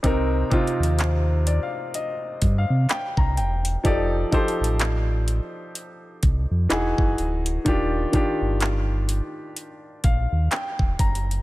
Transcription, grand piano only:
0.03 C3 C4 D#4 A#4
0.50 C3 C4 D#4 F4
1.47 D5
1.63 F5
1.95 D#5
2.58 F5
2.90 G5
3.18 A#5
3.37 G5
3.83 F3 D#4 G4 A4 D5
4.31 F3 D#4 G4 A4 C5
6.69 E3 D#4 F#4 G#4
7.65 D#3 D4 F4 G4
8.12 D#3 D4 F4 G4
10.04 F5
10.52 G5
11.00 A#5

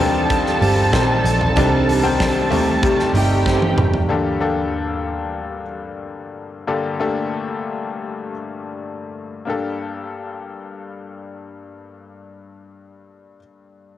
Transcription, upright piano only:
Already playing: G3 D4 D#4 F4
0.00 D#3 C4
0.93 D#3 C4
1.56 D#3 G3 C4 D4
2.03 D#3 C4
2.50 C3 A3
2.83 C3 G3
4.09 G2 D3 A#3 D4 G4 A4
4.40 A#3 D4 G4 A4
6.67 G2 D3 A#3 D4 G4 A4
7.00 A3 D4 G4 A4
7.06 A#3
9.45 G2 A#3 D4 G4
9.50 A4

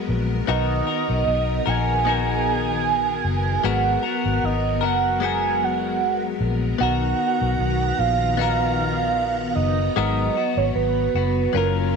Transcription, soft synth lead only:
0.49 D#5
1.68 G#5
3.65 F#5
4.44 D#5
4.84 F#5
5.24 G#5
5.64 F#5
6.80 F#5
7.98 F5
9.55 D#5
9.96 D#5
10.57 C#5
10.75 B4
11.54 A#4

